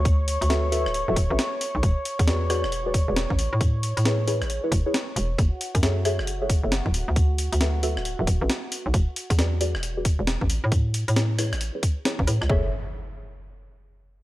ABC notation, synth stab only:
X:1
M:4/4
L:1/16
Q:"Swing 16ths" 1/4=135
K:F#m
V:1 name="Synth stab"
z4 [FABe]2 [FABe] z2 [FABe] z [FABe] z4 | z4 [FGBd]2 [FGBd] z2 [FGBd] z [FGBd] z4 | z4 [EGBc]2 [EGBc] z2 [EGBc] z [EGBc] z4 | z4 [GAce]2 [GAce] z2 [GAce] z [GAce] z4 |
z4 [FABe]2 [FABe] z2 [FABe] z [FABe] z4 | z4 [FGBd]2 [FGBd] z2 [FGBd] z [FGBd] z4 | z4 [EGBc]2 [EGBc] z2 [EGBc] z2 [EGBc] z [EGBc] z | [GAce]2 z12 z2 |]